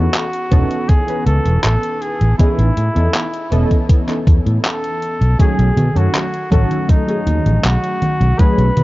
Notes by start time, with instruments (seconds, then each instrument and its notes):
Already playing: synth keys E3 B3 C#4 D#4 A4, flugelhorn F#4
0.14 clap, closed hi-hat
0.33 closed hi-hat
0.51 fretless electric bass E1, synth keys E3 B3 C#4 D#4 A4, kick, closed hi-hat
0.71 closed hi-hat
0.89 flugelhorn G#4, kick, closed hi-hat
1.07 synth keys E3 B3 C#4 D#4 B4, closed hi-hat
1.26 fretless electric bass C#2, flugelhorn A4, closed hi-hat
1.46 fretless electric bass E1, closed hi-hat
1.63 fretless electric bass A1, flugelhorn A4, clap, closed hi-hat
1.83 closed hi-hat
2.01 flugelhorn G#4, closed hi-hat
2.21 fretless electric bass A1, closed hi-hat
2.38 synth keys E3 B3 C#4 D#4 G#4, flugelhorn E4, kick, closed hi-hat
2.58 fretless electric bass A1, closed hi-hat
2.77 fretless electric bass A2, closed hi-hat
2.95 fretless electric bass E2, synth keys E3 B3 C#4 D#4 A4, closed hi-hat
3.14 clap, closed hi-hat
3.34 closed hi-hat
3.51 fretless electric bass E1, synth keys E3 B3 C#4 A4 D#5, closed hi-hat
3.71 kick, closed hi-hat
3.89 kick, closed hi-hat
4.06 synth keys E3 B3 C#4 D#4 A4, clap, closed hi-hat
4.27 fretless electric bass E2, kick, closed hi-hat
4.46 fretless electric bass A2, closed hi-hat
4.64 flugelhorn A4, clap, closed hi-hat
4.84 closed hi-hat
5.02 closed hi-hat
5.21 fretless electric bass B1, closed hi-hat
5.38 synth keys F#3 A3 C#4 D#4 G#4, flugelhorn G#4, kick, closed hi-hat, high conga
5.58 fretless electric bass B1, closed hi-hat
5.76 fretless electric bass B2, closed hi-hat, high conga
5.95 fretless electric bass F#2, synth keys F#3 A3 C#4 D#4 A4, flugelhorn F#4, closed hi-hat, high conga
6.15 clap, closed hi-hat, high conga
6.34 closed hi-hat
6.51 fretless electric bass A1, synth keys F#3 A3 C#4 D#4 A4, flugelhorn F#4, kick, closed hi-hat, high conga
6.71 closed hi-hat, high conga
6.89 flugelhorn D#4, kick, closed hi-hat, high conga
7.07 synth keys F#3 A3 C#4 D#4 G#4, closed hi-hat
7.27 fretless electric bass D#2, closed hi-hat, high conga
7.46 fretless electric bass A1, closed hi-hat, high conga
7.64 fretless electric bass B1, flugelhorn F#4, clap, closed hi-hat, high conga
7.84 closed hi-hat
8.02 closed hi-hat, high conga
8.21 fretless electric bass B1, closed hi-hat, high conga
8.39 synth keys F#3 A3 C#4 D#4 G#4, flugelhorn B4, muted fretless electric bass stroke, kick, closed hi-hat, high conga
8.58 fretless electric bass B1, closed hi-hat
8.77 fretless electric bass B2, closed hi-hat, high conga